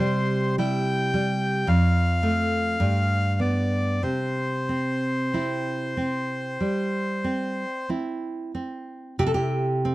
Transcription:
Already playing: C3 C5
0.00 G3
0.58 G3 E4 G5
1.14 G3
1.67 F2 F5
2.23 A3
2.80 G2
3.40 B3 D5
4.03 C3 C5
4.69 C4
5.34 C4 E4
5.97 C4
6.60 G3
7.24 C4
7.89 C4 E4
8.55 C4
9.19 C3 G4
9.27 A4
9.34 E4 G4
9.85 C4

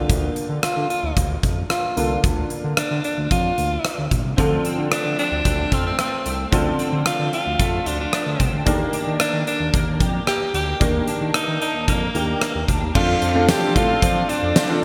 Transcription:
Already playing: D3 A#3 D4 F4 A4
0.09 D2, kick, closed hi-hat
0.36 closed hi-hat
0.49 D3
0.63 D3 F4, cross-stick, closed hi-hat
0.76 D3
0.90 F4, closed hi-hat
1.03 D2
1.17 D2, kick, closed hi-hat
1.43 F2, kick, closed hi-hat
1.70 F4, cross-stick, closed hi-hat
1.96 C2 D3 A#3 D4 F4 A4, closed hi-hat
2.24 D2, kick, closed hi-hat
2.50 closed hi-hat
2.64 D3
2.77 D3 D4, cross-stick, closed hi-hat
2.90 D3
3.04 D4, closed hi-hat
3.17 D2
3.31 F2 F4, kick, closed hi-hat
3.58 D2, closed hi-hat
3.85 cross-stick, closed hi-hat
3.98 D2
4.11 A#1, kick, closed hi-hat
4.24 C2
4.37 D2 D3 F3 C4 D4 F4 A4, kick, closed hi-hat
4.65 C4, closed hi-hat
4.78 D3
4.91 D3 A3 D4, cross-stick, closed hi-hat
5.05 D3
5.18 C4 D4, closed hi-hat
5.32 D2
5.45 D2 A3, kick, closed hi-hat
5.72 F2 C4 F4, kick, closed hi-hat
5.86 C4
5.99 A3 C4, cross-stick, closed hi-hat
6.26 C2 C4, closed hi-hat
6.51 D2 D3 F3 C4 D4 F4 A4, kick, closed hi-hat
6.79 C4, closed hi-hat
6.92 D3
7.06 D3 A3 F4, cross-stick, closed hi-hat
7.19 D3
7.33 C4 F4, closed hi-hat
7.46 D2
7.59 F2 A3, kick, closed hi-hat
7.86 D2 D4 F4, closed hi-hat
8.01 D4
8.13 A3 D4, cross-stick, closed hi-hat
8.26 D2
8.40 C2 C4, kick, closed hi-hat
8.53 D2
8.65 D#2 D#3 A#3 D4 G4 A4, kick, closed hi-hat
8.74 A#4
8.93 D4, closed hi-hat
9.07 D#3
9.20 D#3 A#3 D4, cross-stick, closed hi-hat
9.33 D#3
9.47 D4, closed hi-hat
9.60 D#2
9.74 D#2 A#3, kick, closed hi-hat
10.00 F2 G4, kick, closed hi-hat
10.27 A#3 G4, cross-stick, closed hi-hat
10.54 D2 D4 G4, closed hi-hat
10.80 D#2 D#3 A#3 D4 G4 A#4, kick, closed hi-hat
11.07 D4, closed hi-hat
11.21 D#3
11.34 D#3 A#3 D#4, cross-stick, closed hi-hat
11.48 D#3
11.61 D4 D#4, closed hi-hat
11.74 D#2
11.88 F2 A#3, kick, closed hi-hat
12.14 D#2 D#3 D4 G4 A#4, closed hi-hat
12.41 A#3, cross-stick, closed hi-hat
12.55 D#2
12.68 D2 D4, kick, closed hi-hat
12.82 D#2
12.95 F2 F3 C4 D4 F4 A4 D5 F5 C6, kick, crash
13.22 F2 C4, closed hi-hat
13.35 C4 D4 F4 A4
13.48 D4 G4, snare, closed hi-hat, tambourine
13.75 A2 C4 D4 F4 A4, kick, closed hi-hat
14.02 F3 C4, kick, closed hi-hat
14.29 D4, closed hi-hat
14.43 F2
14.56 C4, snare, closed hi-hat, tambourine
14.69 C4 D4 F4 A4

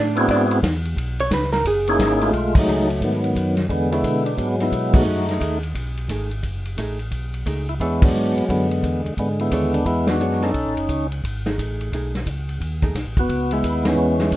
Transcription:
Already playing: A2 D4 D5
0.16 B3 C4 E4 F#4 G#4, ride
0.28 G#2 D4 D5, kick, ride
0.51 ride
0.63 E2, kick, snare, hi-hat pedal, ride
0.85 ride
0.96 B1, kick, ride
1.19 C#5, ride
1.31 C#2 B4, kick, snare, hi-hat pedal, ride
1.42 snare
1.53 A#4, snare, ride
1.65 F#1 G#4, kick, ride
1.87 A#3 C#4 D#4 E4 G#4, ride
1.99 G#1, kick, snare, hi-hat pedal, ride
2.21 G#3 A3 F4, ride
2.33 B1, kick, ride
2.55 F#3 A3 D#4, kick, crash
2.67 C#2 A3 D#4 G#4, hi-hat pedal
2.90 ride
3.01 G#2 D#3 F#3 B3, kick, ride
3.24 ride
3.35 F#2, kick, hi-hat pedal, ride
3.57 snare, ride
3.69 E2 D3 G#3 B3, kick, ride
3.91 E3 G#3 B3 D4 E4 G#4 C#5, ride
4.04 B2, kick, hi-hat pedal, ride
4.26 D4, ride
4.37 G#2 F#3 G#3 D4, kick, ride
4.60 G#3 B3 E4, snare, ride
4.72 B2, kick, hi-hat pedal, ride
4.94 A3 D#4 F#4 G#4, kick, crash
5.06 F#2
5.17 snare
5.29 snare, ride
5.40 D#2 A3 D#4 G#4, kick, hi-hat pedal, ride
5.63 ride
5.75 B1, kick, ride
5.97 ride
6.09 G#1 A3 D#4 G#4, kick, hi-hat pedal, ride
6.31 ride
6.43 F#1, kick, ride
6.65 ride
6.77 A1 A3 D#4 G#4, kick, hi-hat pedal, ride
6.99 ride
7.11 B1, kick, ride
7.34 ride
7.46 C#2 A3 D#4 G#4, kick, hi-hat pedal, ride
7.69 E4, ride
7.80 E2 E3 G#3 B3 D4 E4 G#4 C#5, kick, ride
8.02 F#3 G#3 D4, kick, crash
8.14 G#2, hi-hat pedal
8.36 G#2, ride
8.49 F#2 D3 G#3 B3, kick, ride
8.71 ride
8.83 E2, kick, hi-hat pedal, ride
9.05 E2, ride
9.17 G#2 D3 G#3 B3, kick, ride
9.39 G#3 B3 E4, ride
9.51 D#2 E3 D4 G#4 C#5, kick, hi-hat pedal, ride
9.74 D4, ride
9.86 E2 G#3 B3 E4, kick, ride
10.07 B3 D4 F#4, snare, ride
10.19 F#2 E3 D4 G#4 C#5, hi-hat pedal
10.31 snare
10.42 C#4 D#4 A4, snare, ride
10.54 B1, kick, ride
10.66 A1
10.77 F#1, ride
10.89 C#2, kick, hi-hat pedal, ride
11.12 ride
11.24 G#1, kick, ride
11.46 A3 D#4 G#4, snare, ride
11.58 A1, kick, hi-hat pedal, ride
11.81 ride
11.92 B1 A3 D#4 G#4, kick, ride
12.15 snare, ride
12.26 C#2, kick, hi-hat pedal, ride
12.49 ride
12.60 D#2, kick, ride
12.82 A3 D#4 G#4, kick, ride
12.95 B1, kick, snare, hi-hat pedal, ride
13.06 A1
13.17 F#1 B3 F#4, kick, ride
13.29 C#2, kick, ride
13.51 G#3 B3 E4, ride
13.63 D#2, kick, hi-hat pedal, ride
13.85 E3 G#3 C#4, snare, ride
13.97 E2
14.19 G#3 B3 E4, snare, ride
14.31 F2, kick, hi-hat pedal, ride

